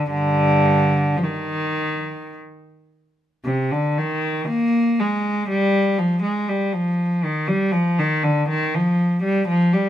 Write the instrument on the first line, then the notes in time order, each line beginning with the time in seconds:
cello
0.10 G2 D3
1.17 F3
1.24 D#3
3.45 C3
3.71 D3
3.98 D#3
4.48 A#3
5.00 G#3
5.49 G3
5.98 F3
6.22 G#3
6.49 G3
6.73 F3
7.24 D#3
7.48 G3
7.72 F3
7.99 D#3
8.24 D3
8.49 D#3
8.74 F3
9.23 G3
9.48 F3
9.73 G3